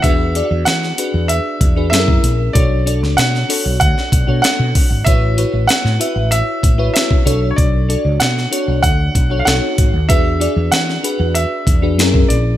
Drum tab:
HH |x-x-x-x-x-x-x-x-|x-x-x-o-x-x-x-o-|x-x-x-x-x-x-x-x-|x-x-x-x-x-x-x-x-|
SD |----oo------o---|---ooo---o--o---|----oo------o---|----oo------o---|
BD |o---------o--o--|o-------o-o---o-|o---------o--o--|o-------o-o---o-|

HH |x-x-x-x-x-x-x-x-|
SD |----oo------o---|
BD |o---------o--o--|